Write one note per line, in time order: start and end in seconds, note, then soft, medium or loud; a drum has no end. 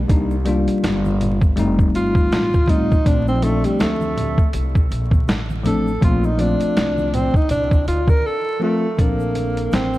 0.08 0.65 C2 loud
0.08 0.34 G3 medium
0.08 0.34 A#3 medium
0.08 0.35 D4 medium
0.08 0.35 D#4 medium
0.08 kick loud
0.08 closed hi-hat medium
0.08 shaker medium
0.31 shaker medium
0.45 1.39 G3 medium
0.45 1.39 A#3 medium
0.45 1.40 D4 medium
0.45 1.40 F4 medium
0.45 closed hi-hat medium
0.45 high conga soft
0.45 shaker soft
0.68 muted upright bass stroke soft
0.68 closed hi-hat soft
0.68 shaker soft
0.83 1.54 G1 loud
0.83 snare loud
0.83 closed hi-hat medium
0.83 shaker medium
1.05 high conga medium
1.05 shaker soft
1.21 closed hi-hat medium
1.21 low conga medium
1.21 shaker medium
1.41 kick medium
1.41 shaker soft
1.56 1.93 F1 loud
1.56 2.48 G3 medium
1.56 2.49 A3 medium
1.56 2.49 C4 medium
1.56 2.50 D#4 loud
1.56 closed hi-hat medium
1.56 shaker medium
1.79 kick loud
1.79 shaker medium
1.95 2.30 G1 medium
1.95 2.71 F4 loud
1.95 closed hi-hat medium
1.95 shaker soft
2.15 kick loud
2.15 high conga medium
2.15 shaker soft
2.32 3.02 A1 medium
2.32 snare loud
2.32 closed hi-hat medium
2.32 shaker medium
2.54 kick medium
2.54 high conga medium
2.54 shaker medium
2.67 2.93 G3 medium
2.67 2.94 A3 medium
2.67 2.94 C4 medium
2.67 3.08 D#4 medium
2.67 2.95 F4 medium
2.67 kick medium
2.67 closed hi-hat medium
2.67 low conga medium
2.67 shaker soft
2.92 kick medium
2.92 shaker soft
3.04 3.62 A#1 loud
3.04 3.30 F3 medium
3.04 3.31 A3 medium
3.04 3.31 C4 medium
3.04 3.27 D4 medium
3.04 3.32 D4 medium
3.04 kick loud
3.04 closed hi-hat medium
3.04 shaker medium
3.27 3.45 C4 medium
3.27 shaker medium
3.41 4.35 F3 medium
3.41 4.35 A3 medium
3.41 3.66 A3 medium
3.41 4.36 C4 medium
3.41 4.37 D4 medium
3.41 closed hi-hat medium
3.41 high conga soft
3.41 shaker soft
3.64 3.82 G3 medium
3.64 muted upright bass stroke soft
3.64 closed hi-hat soft
3.64 shaker soft
3.80 4.36 D2 loud
3.80 4.54 A3 medium
3.80 snare loud
3.80 closed hi-hat medium
3.80 shaker medium
4.01 high conga medium
4.01 shaker medium
4.17 closed hi-hat medium
4.17 low conga medium
4.17 shaker soft
4.38 muted upright bass stroke soft
4.38 kick loud
4.38 shaker soft
4.53 4.89 C2 medium
4.53 closed hi-hat medium
4.53 shaker medium
4.75 kick loud
4.75 shaker soft
4.91 5.26 A#1 medium
4.91 closed hi-hat medium
4.91 shaker soft
5.11 kick loud
5.11 high conga medium
5.11 shaker soft
5.28 5.98 A1 medium
5.28 snare loud
5.28 closed hi-hat medium
5.28 shaker medium
5.50 high conga medium
5.50 shaker soft
5.63 5.89 F3 medium
5.63 5.90 A3 medium
5.63 5.90 C4 medium
5.63 5.91 D4 medium
5.63 6.01 A4 medium
5.63 closed hi-hat medium
5.63 low conga medium
5.63 shaker soft
5.87 shaker soft
6.01 6.58 A#1 loud
6.01 6.26 F3 medium
6.01 6.27 A3 medium
6.01 6.28 C4 medium
6.01 6.28 F4 medium
6.01 6.27 F4 medium
6.01 kick loud
6.01 closed hi-hat medium
6.01 shaker medium
6.23 6.42 D#4 medium
6.23 shaker medium
6.38 7.31 F3 medium
6.38 7.32 A3 medium
6.38 7.32 C4 medium
6.38 7.16 D4 medium
6.38 7.33 F4 medium
6.38 closed hi-hat medium
6.38 high conga soft
6.38 shaker soft
6.61 muted upright bass stroke medium
6.61 closed hi-hat soft
6.61 shaker soft
6.77 7.32 C2 loud
6.77 snare loud
6.77 closed hi-hat medium
6.77 shaker medium
6.98 high conga medium
6.98 shaker medium
7.14 7.38 C4 medium
7.14 closed hi-hat medium
7.14 low conga medium
7.14 shaker medium
7.34 7.51 D#4 medium
7.34 muted upright bass stroke soft
7.34 kick medium
7.34 shaker soft
7.49 7.86 C2 loud
7.49 7.85 D4 medium
7.49 closed hi-hat medium
7.49 low conga medium
7.49 shaker medium
7.71 kick loud
7.71 shaker soft
7.87 8.23 D2 medium
7.87 8.11 F4 medium
7.87 closed hi-hat medium
7.87 shaker soft
8.08 8.27 A#4 loud
8.08 kick loud
8.08 high conga medium
8.08 shaker soft
8.26 8.62 A4 loud
8.60 8.86 F3 medium
8.60 8.86 A3 medium
8.60 9.01 A3 medium
8.60 8.87 C4 medium
8.60 8.87 F4 medium
8.97 9.69 A#1 medium
8.97 9.91 F3 medium
8.97 9.73 A#3 medium
8.97 9.92 C4 medium
8.97 9.92 D4 medium
8.97 9.91 A4 medium
8.97 kick loud
8.97 closed hi-hat medium
8.97 shaker medium
9.20 shaker soft
9.35 closed hi-hat medium
9.35 high conga soft
9.35 shaker soft
9.57 closed hi-hat soft
9.57 shaker soft
9.72 9.98 A1 medium
9.72 9.98 C4 medium
9.72 snare loud
9.72 closed hi-hat medium
9.72 shaker medium
9.94 shaker soft